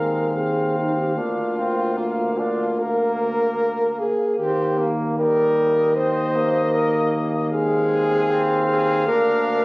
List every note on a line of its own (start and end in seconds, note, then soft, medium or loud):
0.00 1.18 D#2 soft
0.00 0.36 G#3 soft
0.00 1.12 C4 soft
0.00 0.34 A#4 medium
0.00 4.86 F5 medium
0.36 1.19 C4 medium
0.36 0.78 G#4 medium
0.77 0.96 D#4 medium
0.96 1.15 G4 medium
1.16 4.11 D2 medium
1.16 7.21 A#3 medium
1.16 1.57 D4 medium
1.16 2.35 F4 medium
1.58 1.98 C4 medium
1.97 2.40 A#3 medium
2.37 2.68 D4 medium
2.37 2.81 F4 medium
2.80 4.09 A#3 medium
2.80 4.01 A#4 loud
3.99 4.38 G#4 medium
4.39 9.03 D#2 medium
4.39 4.80 C4 medium
4.39 4.89 G4 loud
4.79 5.17 A#3 medium
5.17 5.94 G3 medium
5.17 5.97 A#4 loud
5.17 7.48 D#5 medium
5.95 6.37 C4 medium
5.95 6.75 C5 loud
6.35 7.52 A#3 medium
6.73 7.13 A#4 loud
7.52 8.31 G#3 medium
7.52 9.08 C4 medium
7.52 8.64 G#4 loud
7.52 9.65 F5 medium
8.30 9.06 C4 loud
8.68 9.08 G#4 loud
9.06 9.65 D2 medium
9.06 9.65 A#3 medium
9.06 9.65 D4 medium
9.06 9.65 A#4 loud